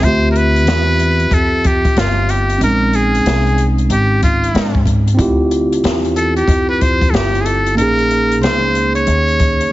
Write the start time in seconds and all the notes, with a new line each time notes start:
0.00 D2 C4 C5 E5, kick, closed hi-hat
0.04 F4 G4
0.32 A#4
0.36 B4, closed hi-hat
0.56 closed hi-hat
0.67 E2, snare, closed hi-hat
1.00 closed hi-hat
1.20 closed hi-hat
1.31 F2 A4, kick, closed hi-hat
1.64 G4, kick, closed hi-hat
1.85 muted upright bass stroke, kick, closed hi-hat
1.96 G1 F4, snare, closed hi-hat
2.29 G4, closed hi-hat
2.50 closed hi-hat
2.58 A#1 C4 C#4, closed hi-hat
2.63 G#3 D#4 A#4
2.93 G#4, closed hi-hat
3.15 closed hi-hat
3.25 C2, snare, closed hi-hat
3.47 closed hi-hat
3.58 closed hi-hat
3.78 closed hi-hat
3.89 G#1 G4, closed hi-hat
4.23 F4, kick, closed hi-hat
4.44 closed hi-hat
4.54 G#2, snare, closed hi-hat
4.75 kick
4.86 kick, closed hi-hat
5.07 closed hi-hat
5.15 C4 E4
5.19 D2 F4 G4, kick, closed hi-hat
5.51 closed hi-hat
5.72 closed hi-hat
5.83 E2, snare, closed hi-hat
6.05 closed hi-hat
6.16 A4, closed hi-hat
6.37 G4, closed hi-hat
6.48 F2, kick, closed hi-hat
6.69 B4
6.81 C5, kick, closed hi-hat
7.01 kick, closed hi-hat
7.10 G1 A4, closed hi-hat
7.15 G4, snare
7.35 closed hi-hat
7.41 G#4
7.45 A4, closed hi-hat
7.66 closed hi-hat
7.75 A#1 A#3 C#4 A#4, closed hi-hat
7.80 D#4 G#4
7.99 closed hi-hat
8.11 closed hi-hat
8.32 closed hi-hat
8.42 C#2 C5, snare, closed hi-hat
8.75 closed hi-hat
8.95 C#5, closed hi-hat
9.07 D#2, closed hi-hat
9.28 closed hi-hat
9.40 kick, closed hi-hat
9.61 closed hi-hat